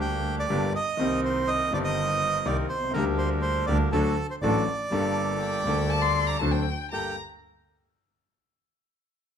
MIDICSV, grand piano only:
0, 0, Header, 1, 2, 480
1, 0, Start_track
1, 0, Key_signature, -2, "minor"
1, 0, Tempo, 491400
1, 967, Time_signature, 4, 2, 24, 8
1, 4321, Tempo, 497512
1, 9102, End_track
2, 0, Start_track
2, 0, Title_t, "Grand piano"
2, 0, Program_c, 0, 0
2, 0, Note_on_c, 0, 38, 94
2, 0, Note_on_c, 0, 50, 80
2, 0, Note_on_c, 0, 55, 62
2, 0, Note_on_c, 0, 58, 63
2, 0, Note_on_c, 0, 67, 70
2, 443, Note_off_c, 0, 55, 0
2, 447, Note_off_c, 0, 38, 0
2, 448, Note_off_c, 0, 50, 0
2, 450, Note_off_c, 0, 58, 0
2, 457, Note_off_c, 0, 67, 0
2, 485, Note_on_c, 0, 31, 99
2, 488, Note_on_c, 0, 50, 74
2, 488, Note_on_c, 0, 67, 86
2, 489, Note_on_c, 0, 55, 67
2, 490, Note_on_c, 0, 58, 69
2, 492, Note_on_c, 0, 43, 90
2, 688, Note_off_c, 0, 31, 0
2, 690, Note_off_c, 0, 50, 0
2, 690, Note_off_c, 0, 55, 0
2, 690, Note_off_c, 0, 58, 0
2, 690, Note_off_c, 0, 67, 0
2, 691, Note_off_c, 0, 43, 0
2, 948, Note_on_c, 0, 51, 81
2, 969, Note_on_c, 0, 48, 89
2, 969, Note_on_c, 0, 58, 75
2, 974, Note_on_c, 0, 36, 94
2, 974, Note_on_c, 0, 60, 77
2, 994, Note_on_c, 0, 67, 86
2, 1639, Note_off_c, 0, 51, 0
2, 1649, Note_off_c, 0, 48, 0
2, 1649, Note_off_c, 0, 58, 0
2, 1651, Note_off_c, 0, 36, 0
2, 1651, Note_off_c, 0, 60, 0
2, 1661, Note_off_c, 0, 67, 0
2, 1668, Note_on_c, 0, 51, 74
2, 1680, Note_on_c, 0, 58, 64
2, 1684, Note_on_c, 0, 43, 88
2, 1687, Note_on_c, 0, 31, 92
2, 1688, Note_on_c, 0, 60, 70
2, 1706, Note_on_c, 0, 67, 83
2, 2358, Note_off_c, 0, 51, 0
2, 2364, Note_off_c, 0, 58, 0
2, 2366, Note_off_c, 0, 43, 0
2, 2368, Note_off_c, 0, 31, 0
2, 2369, Note_off_c, 0, 60, 0
2, 2378, Note_off_c, 0, 67, 0
2, 2397, Note_on_c, 0, 36, 89
2, 2398, Note_on_c, 0, 58, 68
2, 2399, Note_on_c, 0, 48, 91
2, 2399, Note_on_c, 0, 51, 77
2, 2404, Note_on_c, 0, 60, 76
2, 2405, Note_on_c, 0, 67, 87
2, 2601, Note_off_c, 0, 36, 0
2, 2601, Note_off_c, 0, 58, 0
2, 2602, Note_off_c, 0, 48, 0
2, 2602, Note_off_c, 0, 51, 0
2, 2604, Note_off_c, 0, 60, 0
2, 2605, Note_off_c, 0, 67, 0
2, 2714, Note_on_c, 0, 35, 54
2, 2768, Note_off_c, 0, 35, 0
2, 2768, Note_on_c, 0, 36, 61
2, 2825, Note_off_c, 0, 36, 0
2, 2837, Note_on_c, 0, 37, 73
2, 2876, Note_on_c, 0, 50, 105
2, 2884, Note_on_c, 0, 55, 71
2, 2888, Note_on_c, 0, 38, 104
2, 2889, Note_off_c, 0, 37, 0
2, 2901, Note_on_c, 0, 58, 78
2, 2916, Note_on_c, 0, 67, 96
2, 3567, Note_off_c, 0, 55, 0
2, 3569, Note_off_c, 0, 38, 0
2, 3572, Note_off_c, 0, 50, 0
2, 3575, Note_off_c, 0, 58, 0
2, 3583, Note_off_c, 0, 67, 0
2, 3594, Note_on_c, 0, 50, 94
2, 3594, Note_on_c, 0, 58, 68
2, 3598, Note_on_c, 0, 55, 69
2, 3599, Note_on_c, 0, 38, 83
2, 3603, Note_on_c, 0, 67, 86
2, 3799, Note_off_c, 0, 58, 0
2, 3802, Note_off_c, 0, 38, 0
2, 3802, Note_off_c, 0, 55, 0
2, 3803, Note_off_c, 0, 50, 0
2, 3804, Note_off_c, 0, 67, 0
2, 3834, Note_on_c, 0, 54, 84
2, 3836, Note_on_c, 0, 38, 106
2, 3837, Note_on_c, 0, 62, 78
2, 3839, Note_on_c, 0, 69, 93
2, 3840, Note_on_c, 0, 50, 104
2, 3841, Note_on_c, 0, 57, 72
2, 4040, Note_off_c, 0, 54, 0
2, 4041, Note_off_c, 0, 38, 0
2, 4041, Note_off_c, 0, 62, 0
2, 4042, Note_off_c, 0, 69, 0
2, 4043, Note_off_c, 0, 50, 0
2, 4043, Note_off_c, 0, 57, 0
2, 4327, Note_on_c, 0, 54, 73
2, 4329, Note_on_c, 0, 45, 92
2, 4332, Note_on_c, 0, 33, 97
2, 4332, Note_on_c, 0, 57, 79
2, 4332, Note_on_c, 0, 62, 70
2, 4336, Note_on_c, 0, 69, 89
2, 4524, Note_off_c, 0, 54, 0
2, 4525, Note_off_c, 0, 45, 0
2, 4526, Note_off_c, 0, 33, 0
2, 4526, Note_off_c, 0, 57, 0
2, 4526, Note_off_c, 0, 62, 0
2, 4528, Note_off_c, 0, 69, 0
2, 4784, Note_on_c, 0, 55, 78
2, 4797, Note_on_c, 0, 31, 94
2, 4797, Note_on_c, 0, 58, 79
2, 4801, Note_on_c, 0, 43, 94
2, 4806, Note_on_c, 0, 62, 79
2, 4821, Note_on_c, 0, 69, 88
2, 5474, Note_off_c, 0, 55, 0
2, 5481, Note_off_c, 0, 31, 0
2, 5481, Note_off_c, 0, 58, 0
2, 5483, Note_off_c, 0, 43, 0
2, 5485, Note_off_c, 0, 62, 0
2, 5493, Note_off_c, 0, 69, 0
2, 5498, Note_on_c, 0, 55, 68
2, 5516, Note_on_c, 0, 58, 72
2, 5520, Note_on_c, 0, 38, 92
2, 5522, Note_on_c, 0, 50, 79
2, 5527, Note_on_c, 0, 62, 65
2, 5538, Note_on_c, 0, 69, 70
2, 6198, Note_off_c, 0, 55, 0
2, 6207, Note_off_c, 0, 58, 0
2, 6209, Note_off_c, 0, 38, 0
2, 6210, Note_off_c, 0, 50, 0
2, 6212, Note_off_c, 0, 62, 0
2, 6218, Note_off_c, 0, 69, 0
2, 6234, Note_on_c, 0, 54, 69
2, 6238, Note_on_c, 0, 38, 86
2, 6239, Note_on_c, 0, 50, 86
2, 6239, Note_on_c, 0, 60, 63
2, 6241, Note_on_c, 0, 69, 79
2, 6242, Note_on_c, 0, 62, 70
2, 6445, Note_off_c, 0, 54, 0
2, 6447, Note_off_c, 0, 38, 0
2, 6447, Note_off_c, 0, 50, 0
2, 6447, Note_off_c, 0, 60, 0
2, 6448, Note_off_c, 0, 69, 0
2, 6449, Note_off_c, 0, 62, 0
2, 6732, Note_on_c, 0, 67, 54
2, 6736, Note_on_c, 0, 58, 54
2, 6737, Note_on_c, 0, 43, 52
2, 6737, Note_on_c, 0, 69, 59
2, 6933, Note_off_c, 0, 67, 0
2, 6935, Note_off_c, 0, 43, 0
2, 6935, Note_off_c, 0, 58, 0
2, 6935, Note_off_c, 0, 69, 0
2, 9102, End_track
0, 0, End_of_file